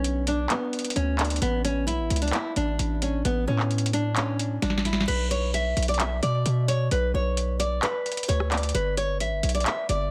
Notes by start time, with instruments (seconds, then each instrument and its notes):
Already playing: 808-style bass B1, nylon-string guitar C#4
0.04 closed hi-hat
0.27 nylon-string guitar D4, closed hi-hat
0.50 nylon-string guitar B3, clap, closed hi-hat
0.73 closed hi-hat
0.79 closed hi-hat
0.84 closed hi-hat
0.90 closed hi-hat
0.96 808-style bass D2, nylon-string guitar C#4, closed hi-hat
1.19 nylon-string guitar D4, clap, closed hi-hat
1.25 closed hi-hat
1.30 closed hi-hat
1.36 closed hi-hat
1.42 808-style bass A1, nylon-string guitar B3, closed hi-hat
1.65 nylon-string guitar C#4, closed hi-hat
1.87 808-style bass B1, nylon-string guitar E4, closed hi-hat
1.99 808-style bass A1
2.10 808-style bass C#2, closed hi-hat
2.16 closed hi-hat
2.22 nylon-string guitar D4, closed hi-hat
2.28 closed hi-hat
2.33 nylon-string guitar E4, clap, closed hi-hat
2.56 808-style bass A1, nylon-string guitar D4, closed hi-hat
2.79 808-style bass A1, closed hi-hat
3.02 nylon-string guitar C#4, closed hi-hat
3.25 808-style bass A1, nylon-string guitar B3, closed hi-hat
3.47 808-style bass A2, nylon-string guitar C#4
3.59 clap
3.71 closed hi-hat
3.78 closed hi-hat
3.86 closed hi-hat
3.93 nylon-string guitar D4, closed hi-hat
4.16 nylon-string guitar C#4, clap, closed hi-hat
4.39 closed hi-hat
4.62 808-style bass A1, nylon-string guitar D4, snare, closed hi-hat
4.70 snare
4.78 snare
4.85 nylon-string guitar E4, snare, closed hi-hat
4.93 snare
5.00 snare
5.08 808-style bass B1, nylon-string guitar B4, closed hi-hat, crash
5.31 nylon-string guitar C#5, closed hi-hat
5.54 nylon-string guitar E5, closed hi-hat
5.77 808-style bass B1, closed hi-hat
5.83 closed hi-hat
5.88 nylon-string guitar D5, closed hi-hat
5.94 closed hi-hat
6.00 nylon-string guitar E5, clap, closed hi-hat
6.23 808-style bass B2, nylon-string guitar D5, closed hi-hat
6.46 808-style bass B2, closed hi-hat
6.68 nylon-string guitar C#5, closed hi-hat
6.91 808-style bass B1, nylon-string guitar B4, closed hi-hat
7.14 808-style bass B1, nylon-string guitar C#5
7.37 closed hi-hat
7.60 nylon-string guitar D5, closed hi-hat
7.83 nylon-string guitar B4, clap, closed hi-hat
8.06 closed hi-hat
8.12 closed hi-hat
8.17 closed hi-hat
8.23 closed hi-hat
8.28 808-style bass D2, nylon-string guitar C#5, closed hi-hat
8.40 cross-stick
8.51 nylon-string guitar D5, clap, closed hi-hat
8.57 closed hi-hat
8.63 closed hi-hat
8.69 closed hi-hat
8.74 808-style bass G1, nylon-string guitar B4, closed hi-hat
8.97 nylon-string guitar C#5, closed hi-hat
9.20 808-style bass A1, nylon-string guitar E5, closed hi-hat
9.32 808-style bass G1
9.43 808-style bass B1, closed hi-hat
9.49 closed hi-hat
9.55 nylon-string guitar D5, closed hi-hat
9.60 closed hi-hat
9.66 nylon-string guitar E5, clap, closed hi-hat
9.89 808-style bass G1, nylon-string guitar D5, closed hi-hat